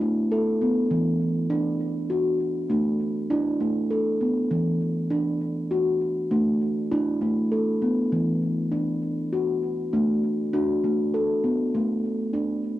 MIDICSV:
0, 0, Header, 1, 2, 480
1, 0, Start_track
1, 0, Key_signature, 2, "major"
1, 0, Tempo, 601805
1, 1196, Time_signature, 3, 2, 24, 8
1, 10205, End_track
2, 0, Start_track
2, 0, Title_t, "Steel tongue drum"
2, 0, Program_c, 0, 114
2, 0, Note_on_c, 0, 62, 94
2, 8, Note_on_c, 0, 57, 66
2, 243, Note_off_c, 0, 57, 0
2, 252, Note_on_c, 0, 69, 79
2, 485, Note_off_c, 0, 69, 0
2, 491, Note_on_c, 0, 59, 61
2, 722, Note_off_c, 0, 62, 0
2, 724, Note_on_c, 0, 52, 79
2, 963, Note_off_c, 0, 59, 0
2, 1128, Note_off_c, 0, 52, 0
2, 1196, Note_on_c, 0, 62, 91
2, 1674, Note_on_c, 0, 66, 77
2, 2148, Note_off_c, 0, 62, 0
2, 2151, Note_on_c, 0, 57, 74
2, 2154, Note_off_c, 0, 66, 0
2, 2158, Note_on_c, 0, 62, 71
2, 2560, Note_off_c, 0, 57, 0
2, 2624, Note_off_c, 0, 62, 0
2, 2634, Note_on_c, 0, 62, 93
2, 2639, Note_on_c, 0, 64, 74
2, 2875, Note_on_c, 0, 57, 67
2, 2876, Note_off_c, 0, 64, 0
2, 3114, Note_off_c, 0, 57, 0
2, 3115, Note_on_c, 0, 69, 72
2, 3354, Note_off_c, 0, 69, 0
2, 3357, Note_on_c, 0, 59, 59
2, 3594, Note_off_c, 0, 62, 0
2, 3596, Note_on_c, 0, 52, 83
2, 3835, Note_off_c, 0, 59, 0
2, 4004, Note_off_c, 0, 52, 0
2, 4071, Note_on_c, 0, 62, 95
2, 4554, Note_on_c, 0, 66, 76
2, 5025, Note_off_c, 0, 62, 0
2, 5034, Note_on_c, 0, 57, 80
2, 5035, Note_off_c, 0, 66, 0
2, 5035, Note_on_c, 0, 62, 68
2, 5444, Note_off_c, 0, 57, 0
2, 5506, Note_off_c, 0, 62, 0
2, 5516, Note_on_c, 0, 62, 96
2, 5516, Note_on_c, 0, 64, 76
2, 5755, Note_on_c, 0, 57, 65
2, 5757, Note_off_c, 0, 64, 0
2, 5996, Note_on_c, 0, 69, 73
2, 5997, Note_off_c, 0, 57, 0
2, 6236, Note_on_c, 0, 59, 62
2, 6238, Note_off_c, 0, 69, 0
2, 6478, Note_on_c, 0, 52, 80
2, 6479, Note_off_c, 0, 62, 0
2, 6719, Note_off_c, 0, 59, 0
2, 6888, Note_off_c, 0, 52, 0
2, 6952, Note_on_c, 0, 62, 77
2, 7437, Note_off_c, 0, 62, 0
2, 7439, Note_on_c, 0, 66, 78
2, 7920, Note_on_c, 0, 62, 69
2, 7921, Note_off_c, 0, 66, 0
2, 7922, Note_on_c, 0, 57, 79
2, 8332, Note_off_c, 0, 57, 0
2, 8392, Note_off_c, 0, 62, 0
2, 8401, Note_on_c, 0, 62, 91
2, 8406, Note_on_c, 0, 66, 70
2, 8645, Note_off_c, 0, 66, 0
2, 8647, Note_on_c, 0, 57, 64
2, 8886, Note_off_c, 0, 57, 0
2, 8886, Note_on_c, 0, 69, 74
2, 9124, Note_on_c, 0, 59, 62
2, 9125, Note_off_c, 0, 69, 0
2, 9364, Note_off_c, 0, 62, 0
2, 9369, Note_on_c, 0, 57, 77
2, 9604, Note_off_c, 0, 59, 0
2, 9776, Note_off_c, 0, 57, 0
2, 9838, Note_on_c, 0, 62, 79
2, 10205, Note_off_c, 0, 62, 0
2, 10205, End_track
0, 0, End_of_file